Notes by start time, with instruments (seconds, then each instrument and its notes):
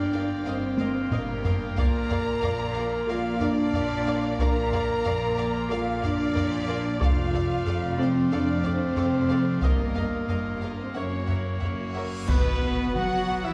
Already playing: double bass section G1, cello section G2, pipe organ A#3 F4 F5 G5, french horn section D4, violin section D5
0.12 viola section D#4 A#4, violin section F5
0.45 double bass section G1, cello section G2, french horn section C4, viola section A#4 D#5, violin section C5 F5
0.78 viola section A#4 D#5, violin section F5, taiko high
1.10 double bass section G1, cello section G2, french horn section A#3, violin section A#4 F5, viola section A#4 D#5, taiko low-mid
1.44 viola section A#4 D#5, violin section F5, taiko low
1.76 double bass section A#1, cello section A#2, pipe organ A#3 F4 D5 F5, french horn section A#4, viola section A#4 D5, violin section F5 A#5, taiko
2.10 viola section A#4 D5, violin section F5, taiko low
2.41 double bass section A#1, cello section A#2, viola section A#4 D5, violin section F5, taiko low
2.74 viola section D5, violin section F5
2.78 viola section A#4
3.07 double bass section A#1, cello section A#2, french horn section F4, viola section A#4 D5, violin section F5
3.38 french horn section D4, viola section A#4 D5, violin section D5 F5, taiko low
3.72 double bass section A#1, cello section A#2, viola section A#4 D5, violin section F5, taiko low
4.06 viola section A#4 D5, violin section F5
4.39 double bass section A#1, cello section A#2, french horn section A#4, viola section A#4 D5, violin section F5 A#5, taiko
4.72 viola section A#4 D5, violin section F5, taiko low
5.04 double bass section A#1, cello section A#2, viola section A#4 D5, violin section F5, taiko low
5.37 viola section A#4 D5, violin section F5
5.69 double bass section A#1, cello section A#2, french horn section F4, viola section A#4 D5, violin section F5
6.02 french horn section D4, viola section A#4 D5, violin section D5 F5, taiko low
6.34 double bass section A#1, cello section A#2, viola section A#4 D5, violin section F5, taiko low
6.68 viola section A#4 D5, violin section F5
7.00 double bass section F1, cello section F2, pipe organ A3 F4 D5 F5, french horn section F4, viola section A4 D5, violin section F5, taiko
7.34 viola section A4 D5, violin section F5, taiko low
7.66 double bass section F1, cello section F2, viola section A4 D5, violin section F5, taiko low
7.97 french horn section C4, viola section A4 D5, violin section F5
8.02 violin section C5
8.31 double bass section F1, cello section F2, french horn section D4, viola section A4 D5, violin section D5 F5
8.63 french horn section C4, viola section A4 D5, violin section C5 F5, taiko low
8.96 double bass section F1, cello section F2, viola section A4 D5, violin section F5, taiko low
9.29 viola section A4 D5, violin section F5
9.61 double bass section G1, cello section G2, french horn section A#3, pipe organ A#3 D#5, viola section A#4 D#5, violin section A#4 F5, taiko, reverse cymbal
9.95 viola section A#4 D#5, violin section F5, taiko low
10.27 double bass section G1, cello section G2, french horn section A#3, violin section A#4 F5, viola section A#4 D#5, taiko low
10.61 viola section A#4 D#5, violin section F5
10.78 french horn section C4, violin section C5
10.94 double bass section F#1, cello section F#2, french horn section C#4, pipe organ E4 C#5 F#5, viola section A#4 C#5, violin section C#5 E5 F#5
11.27 viola section A#4 C#5, violin section E5 F#5, taiko low
11.60 double bass section F#1, cello section F#2, viola section A#4, violin section E5 F#5, taiko low
11.64 viola section C#5
11.93 viola section A#4, violin section E5 F#5
11.97 viola section C#5
12.27 double bass section B1, cello section B2, viola section B3, pipe organ B3 F#4 B4 F#5, french horn section B3, violin section B4, trumpet section B4, concert bass drum, taiko, crash, impact
12.61 double bass section B1
12.94 double bass section B1, cello section F#3, french horn section F#4, viola section F#4, trumpet section F#5, violin section F#5, taiko mid
13.27 double bass section B1
13.43 cello section E3, french horn section E4, viola section E4, trumpet section E5, violin section E5